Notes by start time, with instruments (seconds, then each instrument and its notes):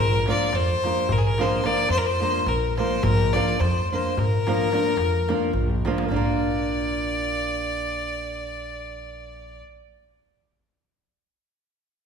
Already playing: upright bass A#1, fiddle A#4
0.26 nylon-string guitar F3 A#3 D4 F4 A#4, fiddle D5, darbuka tek
0.53 upright bass F2, fiddle C5, darbuka tek
0.68 darbuka tek
0.84 nylon-string guitar F3 A#3 D4 F4 A#4, darbuka tek
0.97 darbuka tek
1.09 upright bass A#1, fiddle A#4, darbuka dum
1.18 fiddle G#4
1.24 fiddle A#4, darbuka tek
1.38 nylon-string guitar F3 A#3 D4 F4 A#4, fiddle C5, darbuka tek
1.64 nylon-string guitar F3 A#3 D4 F4 A#4, fiddle D5, darbuka tek
1.89 upright bass F2, fiddle C5, darbuka tek
1.98 fiddle A#4
2.05 fiddle C5, darbuka tek
2.20 nylon-string guitar F3 A#3 D4 F4 A#4
2.46 upright bass A#1, fiddle A#4, darbuka tek
2.62 darbuka tek
2.77 nylon-string guitar F3 A#3 D4 F4 A#4, fiddle C5, darbuka tek
2.91 darbuka tek
3.03 upright bass A#1, fiddle A#4, darbuka dum
3.18 darbuka tek
3.33 nylon-string guitar F3 A#3 D4 F4 A#4, fiddle D5, darbuka tek
3.48 darbuka tek
3.59 upright bass F2, fiddle C5, darbuka tek
3.76 darbuka tek
3.91 nylon-string guitar F3 A#3 D4 F4 A#4, fiddle C5
4.04 darbuka tek
4.17 upright bass A#1, fiddle A#4, darbuka dum
4.32 darbuka tek
4.47 nylon-string guitar F3 A#3 D4 F4 A#4, darbuka tek
4.59 darbuka tek
4.72 nylon-string guitar F3 A#3 D4 F4 A#4, darbuka tek
4.85 darbuka tek
4.97 upright bass F2, darbuka tek
5.12 darbuka tek
5.28 nylon-string guitar F3 A#3 D4 F4 A#4, darbuka tek
5.41 darbuka tek
5.53 upright bass A#1, darbuka dum
5.70 darbuka dum
5.85 nylon-string guitar F3 A#3 D4 F4 A#4, darbuka tek
5.98 darbuka tek
6.08 upright bass A#1, nylon-string guitar A#3 D4, fiddle D5, darbuka dum
6.13 nylon-string guitar F4 A#4